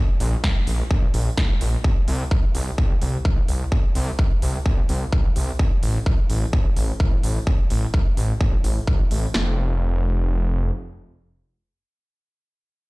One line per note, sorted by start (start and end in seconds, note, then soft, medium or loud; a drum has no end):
0.20 0.36 A#1 loud
0.20 open hi-hat loud
0.44 0.52 A#1 medium
0.44 kick loud
0.44 snare loud
0.67 0.83 A#1 medium
0.67 open hi-hat loud
0.91 1.06 A#1 medium
0.91 kick loud
1.14 1.30 A#1 loud
1.14 open hi-hat loud
1.37 1.53 A#1 loud
1.37 kick loud
1.37 snare loud
1.61 1.77 A#1 loud
1.61 open hi-hat loud
1.84 1.92 C2 medium
1.84 kick loud
2.08 2.23 C2 medium
2.08 open hi-hat loud
2.31 2.39 C2 medium
2.31 kick loud
2.55 2.70 C2 medium
2.55 open hi-hat loud
2.78 2.94 C2 medium
2.78 kick loud
3.02 3.17 C2 loud
3.02 open hi-hat loud
3.25 3.41 C2 loud
3.25 kick loud
3.48 3.64 C2 medium
3.48 open hi-hat loud
3.72 3.80 C2 medium
3.72 kick loud
3.95 4.11 C2 loud
3.95 open hi-hat loud
4.19 4.27 C2 medium
4.19 kick loud
4.42 4.58 C2 medium
4.42 open hi-hat loud
4.66 4.81 C2 medium
4.66 kick loud
4.89 5.05 C2 loud
4.89 open hi-hat loud
5.12 5.28 C2 loud
5.12 kick loud
5.36 5.52 C2 medium
5.36 open hi-hat medium
5.59 5.67 A1 medium
5.59 kick loud
5.83 5.98 A1 loud
5.83 open hi-hat loud
6.06 6.14 A1 medium
6.06 kick loud
6.30 6.45 A1 medium
6.30 open hi-hat medium
6.53 6.69 A1 medium
6.53 kick loud
6.77 6.92 A1 medium
6.77 open hi-hat loud
7.00 7.16 A1 loud
7.00 kick loud
7.23 7.39 A1 medium
7.23 open hi-hat loud
7.47 7.55 A1 medium
7.47 kick loud
7.70 7.86 A1 loud
7.70 open hi-hat loud
7.94 8.02 A1 medium
7.94 kick loud
8.17 8.33 A1 medium
8.17 open hi-hat medium
8.41 8.56 A1 medium
8.41 kick loud
8.64 8.80 A1 loud
8.64 open hi-hat loud
8.87 9.03 A1 medium
8.87 kick loud
9.11 9.27 A1 medium
9.11 open hi-hat medium
9.34 10.71 F1 medium
9.34 snare loud